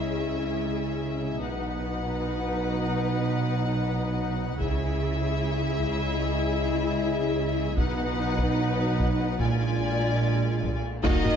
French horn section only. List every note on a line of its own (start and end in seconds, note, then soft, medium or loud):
0.00 1.39 G#3 soft
0.00 1.38 E4 soft
1.41 4.43 F#3 soft
1.41 4.43 D#4 soft
4.60 7.74 G#3 medium
4.60 7.75 E4 soft
7.78 9.37 F#3 medium
7.78 9.37 D#4 medium
9.41 10.68 G#3 medium
9.41 10.68 D4 medium
11.04 11.36 D#4 loud